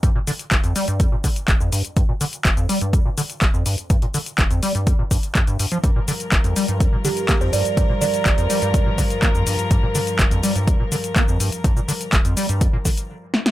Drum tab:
HH |x-oxxxoxx-oxx-ox|x-oxxxoxx-oxx-ox|xxoxxxoxx-oxxxox|x-oxxxoxx-oxx-ox|
SH |x-xxxxxxx-xxxxxx|x-xxxxxxx-xxxxxx|x-xxxxxxx-xxxxxx|x-xxxxxxx-xxxxxx|
CP |----x-------x---|----x-------x---|----x-------x---|----x-------x---|
SD |----------------|----------------|----------------|----------------|
BD |o---o---o-o-o---|o---o---o---o---|o---o---o-o-o---|o---o---o---o---|

HH |x-oxxxoxx-oxx-ox|x-oxxxoxx-oxx-ox|x-oxxxoxx-ox----|
SH |x-xxxxxxx-xxxxxx|x-xxxxxxx-xxxxxx|xxxxxxxxx-xx----|
CP |----x-------x---|----x-------x---|----x-----------|
SD |----------------|----------------|--------------oo|
BD |o---o---o-o-o---|o---o---o---o---|o---o---o-o-----|